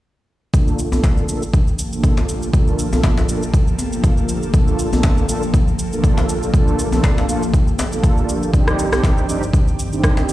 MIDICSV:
0, 0, Header, 1, 5, 480
1, 0, Start_track
1, 0, Key_signature, -2, "minor"
1, 0, Tempo, 500000
1, 516, Time_signature, 4, 2, 24, 8
1, 9916, End_track
2, 0, Start_track
2, 0, Title_t, "Analog polysynth"
2, 0, Program_c, 0, 90
2, 516, Note_on_c, 0, 58, 80
2, 516, Note_on_c, 0, 62, 75
2, 516, Note_on_c, 0, 65, 68
2, 516, Note_on_c, 0, 69, 84
2, 857, Note_off_c, 0, 58, 0
2, 857, Note_off_c, 0, 62, 0
2, 857, Note_off_c, 0, 65, 0
2, 857, Note_off_c, 0, 69, 0
2, 886, Note_on_c, 0, 58, 81
2, 886, Note_on_c, 0, 65, 79
2, 887, Note_on_c, 0, 69, 95
2, 888, Note_on_c, 0, 62, 78
2, 1209, Note_off_c, 0, 58, 0
2, 1209, Note_off_c, 0, 65, 0
2, 1210, Note_off_c, 0, 62, 0
2, 1210, Note_off_c, 0, 69, 0
2, 1233, Note_on_c, 0, 58, 87
2, 1233, Note_on_c, 0, 62, 80
2, 1233, Note_on_c, 0, 65, 80
2, 1233, Note_on_c, 0, 69, 98
2, 1367, Note_off_c, 0, 58, 0
2, 1367, Note_off_c, 0, 62, 0
2, 1367, Note_off_c, 0, 65, 0
2, 1367, Note_off_c, 0, 69, 0
2, 1846, Note_on_c, 0, 65, 70
2, 1847, Note_on_c, 0, 58, 76
2, 1847, Note_on_c, 0, 62, 71
2, 1848, Note_on_c, 0, 69, 85
2, 2409, Note_off_c, 0, 58, 0
2, 2409, Note_off_c, 0, 62, 0
2, 2409, Note_off_c, 0, 65, 0
2, 2410, Note_off_c, 0, 69, 0
2, 2431, Note_on_c, 0, 65, 68
2, 2432, Note_on_c, 0, 58, 76
2, 2432, Note_on_c, 0, 62, 73
2, 2432, Note_on_c, 0, 69, 82
2, 2775, Note_off_c, 0, 58, 0
2, 2775, Note_off_c, 0, 62, 0
2, 2775, Note_off_c, 0, 65, 0
2, 2775, Note_off_c, 0, 69, 0
2, 2806, Note_on_c, 0, 65, 83
2, 2807, Note_on_c, 0, 69, 97
2, 2808, Note_on_c, 0, 58, 88
2, 2808, Note_on_c, 0, 62, 79
2, 3129, Note_off_c, 0, 65, 0
2, 3130, Note_off_c, 0, 58, 0
2, 3130, Note_off_c, 0, 62, 0
2, 3130, Note_off_c, 0, 69, 0
2, 3152, Note_on_c, 0, 62, 83
2, 3153, Note_on_c, 0, 58, 86
2, 3153, Note_on_c, 0, 65, 77
2, 3153, Note_on_c, 0, 69, 94
2, 3287, Note_off_c, 0, 58, 0
2, 3287, Note_off_c, 0, 62, 0
2, 3287, Note_off_c, 0, 65, 0
2, 3287, Note_off_c, 0, 69, 0
2, 3769, Note_on_c, 0, 58, 80
2, 3769, Note_on_c, 0, 62, 70
2, 3769, Note_on_c, 0, 69, 84
2, 3770, Note_on_c, 0, 65, 70
2, 4330, Note_off_c, 0, 69, 0
2, 4331, Note_off_c, 0, 58, 0
2, 4331, Note_off_c, 0, 62, 0
2, 4331, Note_off_c, 0, 65, 0
2, 4357, Note_on_c, 0, 58, 80
2, 4357, Note_on_c, 0, 62, 72
2, 4357, Note_on_c, 0, 65, 72
2, 4357, Note_on_c, 0, 69, 87
2, 4698, Note_off_c, 0, 58, 0
2, 4698, Note_off_c, 0, 62, 0
2, 4698, Note_off_c, 0, 65, 0
2, 4698, Note_off_c, 0, 69, 0
2, 4728, Note_on_c, 0, 65, 75
2, 4729, Note_on_c, 0, 58, 91
2, 4729, Note_on_c, 0, 62, 82
2, 4729, Note_on_c, 0, 69, 98
2, 5050, Note_off_c, 0, 65, 0
2, 5051, Note_off_c, 0, 58, 0
2, 5051, Note_off_c, 0, 62, 0
2, 5051, Note_off_c, 0, 69, 0
2, 5076, Note_on_c, 0, 58, 84
2, 5076, Note_on_c, 0, 62, 79
2, 5077, Note_on_c, 0, 65, 82
2, 5077, Note_on_c, 0, 69, 96
2, 5208, Note_off_c, 0, 58, 0
2, 5208, Note_off_c, 0, 62, 0
2, 5209, Note_off_c, 0, 65, 0
2, 5209, Note_off_c, 0, 69, 0
2, 5688, Note_on_c, 0, 58, 78
2, 5688, Note_on_c, 0, 62, 67
2, 5688, Note_on_c, 0, 69, 85
2, 5689, Note_on_c, 0, 65, 69
2, 6250, Note_off_c, 0, 58, 0
2, 6250, Note_off_c, 0, 62, 0
2, 6250, Note_off_c, 0, 65, 0
2, 6250, Note_off_c, 0, 69, 0
2, 6276, Note_on_c, 0, 62, 72
2, 6276, Note_on_c, 0, 65, 70
2, 6277, Note_on_c, 0, 58, 75
2, 6278, Note_on_c, 0, 69, 88
2, 6617, Note_off_c, 0, 62, 0
2, 6617, Note_off_c, 0, 65, 0
2, 6618, Note_off_c, 0, 58, 0
2, 6618, Note_off_c, 0, 69, 0
2, 6647, Note_on_c, 0, 62, 78
2, 6647, Note_on_c, 0, 65, 82
2, 6648, Note_on_c, 0, 58, 88
2, 6648, Note_on_c, 0, 69, 95
2, 6969, Note_off_c, 0, 62, 0
2, 6970, Note_off_c, 0, 58, 0
2, 6970, Note_off_c, 0, 65, 0
2, 6970, Note_off_c, 0, 69, 0
2, 6996, Note_on_c, 0, 58, 86
2, 6996, Note_on_c, 0, 62, 84
2, 6996, Note_on_c, 0, 65, 83
2, 6996, Note_on_c, 0, 69, 101
2, 7128, Note_off_c, 0, 58, 0
2, 7128, Note_off_c, 0, 62, 0
2, 7128, Note_off_c, 0, 65, 0
2, 7128, Note_off_c, 0, 69, 0
2, 7606, Note_on_c, 0, 58, 74
2, 7606, Note_on_c, 0, 62, 69
2, 7606, Note_on_c, 0, 69, 80
2, 7607, Note_on_c, 0, 65, 67
2, 8169, Note_off_c, 0, 58, 0
2, 8169, Note_off_c, 0, 62, 0
2, 8169, Note_off_c, 0, 69, 0
2, 8170, Note_off_c, 0, 65, 0
2, 8192, Note_on_c, 0, 67, 85
2, 8193, Note_on_c, 0, 60, 79
2, 8193, Note_on_c, 0, 62, 73
2, 8194, Note_on_c, 0, 63, 74
2, 8535, Note_off_c, 0, 67, 0
2, 8536, Note_off_c, 0, 60, 0
2, 8536, Note_off_c, 0, 62, 0
2, 8536, Note_off_c, 0, 63, 0
2, 8567, Note_on_c, 0, 60, 90
2, 8567, Note_on_c, 0, 62, 75
2, 8569, Note_on_c, 0, 63, 78
2, 8569, Note_on_c, 0, 67, 95
2, 8890, Note_off_c, 0, 60, 0
2, 8890, Note_off_c, 0, 62, 0
2, 8890, Note_off_c, 0, 63, 0
2, 8890, Note_off_c, 0, 67, 0
2, 8916, Note_on_c, 0, 60, 86
2, 8916, Note_on_c, 0, 62, 80
2, 8916, Note_on_c, 0, 67, 96
2, 8917, Note_on_c, 0, 63, 81
2, 9048, Note_off_c, 0, 60, 0
2, 9048, Note_off_c, 0, 62, 0
2, 9048, Note_off_c, 0, 67, 0
2, 9049, Note_off_c, 0, 63, 0
2, 9527, Note_on_c, 0, 67, 88
2, 9528, Note_on_c, 0, 60, 79
2, 9528, Note_on_c, 0, 62, 74
2, 9528, Note_on_c, 0, 63, 68
2, 9916, Note_off_c, 0, 60, 0
2, 9916, Note_off_c, 0, 62, 0
2, 9916, Note_off_c, 0, 63, 0
2, 9916, Note_off_c, 0, 67, 0
2, 9916, End_track
3, 0, Start_track
3, 0, Title_t, "Ambient pad"
3, 0, Program_c, 1, 92
3, 517, Note_on_c, 1, 58, 73
3, 517, Note_on_c, 1, 67, 69
3, 518, Note_on_c, 1, 53, 79
3, 520, Note_on_c, 1, 69, 86
3, 8158, Note_off_c, 1, 58, 0
3, 8159, Note_off_c, 1, 53, 0
3, 8160, Note_off_c, 1, 69, 0
3, 8189, Note_on_c, 1, 51, 71
3, 8191, Note_on_c, 1, 43, 78
3, 8191, Note_on_c, 1, 60, 76
3, 8192, Note_on_c, 1, 74, 86
3, 9916, Note_off_c, 1, 43, 0
3, 9916, Note_off_c, 1, 51, 0
3, 9916, Note_off_c, 1, 60, 0
3, 9916, Note_off_c, 1, 67, 0
3, 9916, Note_off_c, 1, 74, 0
3, 9916, End_track
4, 0, Start_track
4, 0, Title_t, "Djembe"
4, 884, Note_on_c, 9, 63, 71
4, 980, Note_off_c, 9, 63, 0
4, 997, Note_on_c, 9, 62, 90
4, 1093, Note_off_c, 9, 62, 0
4, 2086, Note_on_c, 9, 62, 70
4, 2182, Note_off_c, 9, 62, 0
4, 2809, Note_on_c, 9, 63, 76
4, 2905, Note_off_c, 9, 63, 0
4, 2914, Note_on_c, 9, 62, 103
4, 3010, Note_off_c, 9, 62, 0
4, 3048, Note_on_c, 9, 62, 76
4, 3144, Note_off_c, 9, 62, 0
4, 3633, Note_on_c, 9, 63, 62
4, 3729, Note_off_c, 9, 63, 0
4, 4732, Note_on_c, 9, 63, 77
4, 4828, Note_off_c, 9, 63, 0
4, 4832, Note_on_c, 9, 62, 100
4, 4928, Note_off_c, 9, 62, 0
4, 5928, Note_on_c, 9, 62, 75
4, 6024, Note_off_c, 9, 62, 0
4, 6646, Note_on_c, 9, 63, 78
4, 6742, Note_off_c, 9, 63, 0
4, 6756, Note_on_c, 9, 62, 105
4, 6852, Note_off_c, 9, 62, 0
4, 6888, Note_on_c, 9, 63, 54
4, 6894, Note_on_c, 9, 62, 72
4, 6984, Note_off_c, 9, 63, 0
4, 6990, Note_off_c, 9, 62, 0
4, 7472, Note_on_c, 9, 63, 54
4, 7479, Note_on_c, 9, 62, 81
4, 7568, Note_off_c, 9, 63, 0
4, 7575, Note_off_c, 9, 62, 0
4, 8566, Note_on_c, 9, 63, 67
4, 8662, Note_off_c, 9, 63, 0
4, 8684, Note_on_c, 9, 62, 87
4, 8780, Note_off_c, 9, 62, 0
4, 9765, Note_on_c, 9, 62, 64
4, 9861, Note_off_c, 9, 62, 0
4, 9916, End_track
5, 0, Start_track
5, 0, Title_t, "Drums"
5, 515, Note_on_c, 9, 36, 107
5, 517, Note_on_c, 9, 82, 51
5, 611, Note_off_c, 9, 36, 0
5, 613, Note_off_c, 9, 82, 0
5, 649, Note_on_c, 9, 82, 25
5, 745, Note_off_c, 9, 82, 0
5, 755, Note_on_c, 9, 82, 83
5, 851, Note_off_c, 9, 82, 0
5, 889, Note_on_c, 9, 82, 38
5, 985, Note_off_c, 9, 82, 0
5, 994, Note_on_c, 9, 36, 109
5, 995, Note_on_c, 9, 82, 50
5, 1090, Note_off_c, 9, 36, 0
5, 1091, Note_off_c, 9, 82, 0
5, 1127, Note_on_c, 9, 82, 24
5, 1223, Note_off_c, 9, 82, 0
5, 1234, Note_on_c, 9, 82, 88
5, 1330, Note_off_c, 9, 82, 0
5, 1368, Note_on_c, 9, 82, 37
5, 1464, Note_off_c, 9, 82, 0
5, 1474, Note_on_c, 9, 36, 109
5, 1474, Note_on_c, 9, 82, 48
5, 1570, Note_off_c, 9, 36, 0
5, 1570, Note_off_c, 9, 82, 0
5, 1608, Note_on_c, 9, 82, 23
5, 1704, Note_off_c, 9, 82, 0
5, 1715, Note_on_c, 9, 82, 88
5, 1811, Note_off_c, 9, 82, 0
5, 1849, Note_on_c, 9, 82, 38
5, 1945, Note_off_c, 9, 82, 0
5, 1954, Note_on_c, 9, 36, 105
5, 1956, Note_on_c, 9, 82, 49
5, 2050, Note_off_c, 9, 36, 0
5, 2052, Note_off_c, 9, 82, 0
5, 2089, Note_on_c, 9, 82, 24
5, 2185, Note_off_c, 9, 82, 0
5, 2196, Note_on_c, 9, 82, 81
5, 2292, Note_off_c, 9, 82, 0
5, 2328, Note_on_c, 9, 82, 37
5, 2424, Note_off_c, 9, 82, 0
5, 2434, Note_on_c, 9, 36, 113
5, 2435, Note_on_c, 9, 82, 50
5, 2530, Note_off_c, 9, 36, 0
5, 2531, Note_off_c, 9, 82, 0
5, 2569, Note_on_c, 9, 82, 26
5, 2665, Note_off_c, 9, 82, 0
5, 2675, Note_on_c, 9, 82, 92
5, 2771, Note_off_c, 9, 82, 0
5, 2810, Note_on_c, 9, 82, 39
5, 2906, Note_off_c, 9, 82, 0
5, 2914, Note_on_c, 9, 36, 110
5, 2916, Note_on_c, 9, 82, 50
5, 3010, Note_off_c, 9, 36, 0
5, 3012, Note_off_c, 9, 82, 0
5, 3050, Note_on_c, 9, 82, 25
5, 3146, Note_off_c, 9, 82, 0
5, 3155, Note_on_c, 9, 82, 92
5, 3251, Note_off_c, 9, 82, 0
5, 3291, Note_on_c, 9, 82, 40
5, 3387, Note_off_c, 9, 82, 0
5, 3394, Note_on_c, 9, 36, 116
5, 3397, Note_on_c, 9, 82, 49
5, 3490, Note_off_c, 9, 36, 0
5, 3493, Note_off_c, 9, 82, 0
5, 3529, Note_on_c, 9, 82, 25
5, 3625, Note_off_c, 9, 82, 0
5, 3636, Note_on_c, 9, 82, 95
5, 3732, Note_off_c, 9, 82, 0
5, 3769, Note_on_c, 9, 82, 41
5, 3865, Note_off_c, 9, 82, 0
5, 3875, Note_on_c, 9, 36, 110
5, 3875, Note_on_c, 9, 82, 50
5, 3971, Note_off_c, 9, 36, 0
5, 3971, Note_off_c, 9, 82, 0
5, 4008, Note_on_c, 9, 82, 26
5, 4104, Note_off_c, 9, 82, 0
5, 4114, Note_on_c, 9, 82, 87
5, 4210, Note_off_c, 9, 82, 0
5, 4250, Note_on_c, 9, 82, 38
5, 4346, Note_off_c, 9, 82, 0
5, 4355, Note_on_c, 9, 82, 53
5, 4356, Note_on_c, 9, 36, 120
5, 4451, Note_off_c, 9, 82, 0
5, 4452, Note_off_c, 9, 36, 0
5, 4489, Note_on_c, 9, 82, 26
5, 4585, Note_off_c, 9, 82, 0
5, 4596, Note_on_c, 9, 82, 95
5, 4692, Note_off_c, 9, 82, 0
5, 4731, Note_on_c, 9, 82, 39
5, 4827, Note_off_c, 9, 82, 0
5, 4836, Note_on_c, 9, 36, 111
5, 4837, Note_on_c, 9, 82, 50
5, 4932, Note_off_c, 9, 36, 0
5, 4933, Note_off_c, 9, 82, 0
5, 4969, Note_on_c, 9, 82, 26
5, 5065, Note_off_c, 9, 82, 0
5, 5076, Note_on_c, 9, 82, 97
5, 5172, Note_off_c, 9, 82, 0
5, 5210, Note_on_c, 9, 82, 39
5, 5306, Note_off_c, 9, 82, 0
5, 5316, Note_on_c, 9, 36, 116
5, 5318, Note_on_c, 9, 82, 50
5, 5412, Note_off_c, 9, 36, 0
5, 5414, Note_off_c, 9, 82, 0
5, 5451, Note_on_c, 9, 82, 27
5, 5547, Note_off_c, 9, 82, 0
5, 5556, Note_on_c, 9, 82, 97
5, 5652, Note_off_c, 9, 82, 0
5, 5690, Note_on_c, 9, 82, 44
5, 5786, Note_off_c, 9, 82, 0
5, 5795, Note_on_c, 9, 36, 108
5, 5798, Note_on_c, 9, 82, 51
5, 5891, Note_off_c, 9, 36, 0
5, 5894, Note_off_c, 9, 82, 0
5, 5933, Note_on_c, 9, 82, 26
5, 6029, Note_off_c, 9, 82, 0
5, 6039, Note_on_c, 9, 82, 85
5, 6135, Note_off_c, 9, 82, 0
5, 6171, Note_on_c, 9, 82, 38
5, 6267, Note_off_c, 9, 82, 0
5, 6275, Note_on_c, 9, 36, 114
5, 6278, Note_on_c, 9, 82, 50
5, 6371, Note_off_c, 9, 36, 0
5, 6374, Note_off_c, 9, 82, 0
5, 6411, Note_on_c, 9, 82, 26
5, 6507, Note_off_c, 9, 82, 0
5, 6517, Note_on_c, 9, 82, 93
5, 6613, Note_off_c, 9, 82, 0
5, 6650, Note_on_c, 9, 82, 40
5, 6746, Note_off_c, 9, 82, 0
5, 6755, Note_on_c, 9, 36, 107
5, 6758, Note_on_c, 9, 82, 52
5, 6851, Note_off_c, 9, 36, 0
5, 6854, Note_off_c, 9, 82, 0
5, 6891, Note_on_c, 9, 82, 25
5, 6987, Note_off_c, 9, 82, 0
5, 6998, Note_on_c, 9, 82, 93
5, 7094, Note_off_c, 9, 82, 0
5, 7130, Note_on_c, 9, 82, 40
5, 7226, Note_off_c, 9, 82, 0
5, 7234, Note_on_c, 9, 36, 116
5, 7237, Note_on_c, 9, 82, 52
5, 7330, Note_off_c, 9, 36, 0
5, 7333, Note_off_c, 9, 82, 0
5, 7369, Note_on_c, 9, 82, 25
5, 7465, Note_off_c, 9, 82, 0
5, 7476, Note_on_c, 9, 82, 95
5, 7572, Note_off_c, 9, 82, 0
5, 7609, Note_on_c, 9, 82, 42
5, 7705, Note_off_c, 9, 82, 0
5, 7714, Note_on_c, 9, 36, 112
5, 7715, Note_on_c, 9, 82, 52
5, 7810, Note_off_c, 9, 36, 0
5, 7811, Note_off_c, 9, 82, 0
5, 7849, Note_on_c, 9, 82, 26
5, 7945, Note_off_c, 9, 82, 0
5, 7958, Note_on_c, 9, 82, 83
5, 8054, Note_off_c, 9, 82, 0
5, 8090, Note_on_c, 9, 82, 37
5, 8186, Note_off_c, 9, 82, 0
5, 8194, Note_on_c, 9, 36, 110
5, 8197, Note_on_c, 9, 82, 52
5, 8290, Note_off_c, 9, 36, 0
5, 8293, Note_off_c, 9, 82, 0
5, 8329, Note_on_c, 9, 37, 85
5, 8330, Note_on_c, 9, 82, 24
5, 8425, Note_off_c, 9, 37, 0
5, 8426, Note_off_c, 9, 82, 0
5, 8437, Note_on_c, 9, 82, 91
5, 8533, Note_off_c, 9, 82, 0
5, 8570, Note_on_c, 9, 37, 85
5, 8570, Note_on_c, 9, 82, 37
5, 8666, Note_off_c, 9, 37, 0
5, 8666, Note_off_c, 9, 82, 0
5, 8674, Note_on_c, 9, 36, 107
5, 8679, Note_on_c, 9, 82, 50
5, 8770, Note_off_c, 9, 36, 0
5, 8775, Note_off_c, 9, 82, 0
5, 8811, Note_on_c, 9, 82, 24
5, 8907, Note_off_c, 9, 82, 0
5, 8918, Note_on_c, 9, 82, 90
5, 9014, Note_off_c, 9, 82, 0
5, 9052, Note_on_c, 9, 82, 37
5, 9148, Note_off_c, 9, 82, 0
5, 9153, Note_on_c, 9, 36, 113
5, 9158, Note_on_c, 9, 82, 47
5, 9249, Note_off_c, 9, 36, 0
5, 9254, Note_off_c, 9, 82, 0
5, 9291, Note_on_c, 9, 82, 25
5, 9387, Note_off_c, 9, 82, 0
5, 9398, Note_on_c, 9, 82, 92
5, 9494, Note_off_c, 9, 82, 0
5, 9530, Note_on_c, 9, 82, 40
5, 9626, Note_off_c, 9, 82, 0
5, 9634, Note_on_c, 9, 36, 107
5, 9636, Note_on_c, 9, 37, 83
5, 9637, Note_on_c, 9, 82, 48
5, 9730, Note_off_c, 9, 36, 0
5, 9732, Note_off_c, 9, 37, 0
5, 9733, Note_off_c, 9, 82, 0
5, 9770, Note_on_c, 9, 82, 25
5, 9866, Note_off_c, 9, 82, 0
5, 9875, Note_on_c, 9, 82, 82
5, 9916, Note_off_c, 9, 82, 0
5, 9916, End_track
0, 0, End_of_file